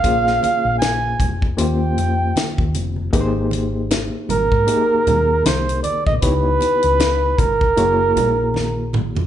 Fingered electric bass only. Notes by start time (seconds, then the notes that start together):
0.04 A#1
0.65 A#1
1.20 F1
1.58 D#2
1.97 F2
2.59 D#2
2.74 F1
3.14 G#1
4.29 G#1
4.52 G#2
5.07 D#2
5.45 C2
6.06 A#1
6.23 C#2
6.84 C#2
7.38 G1
7.77 F#1
8.16 A#1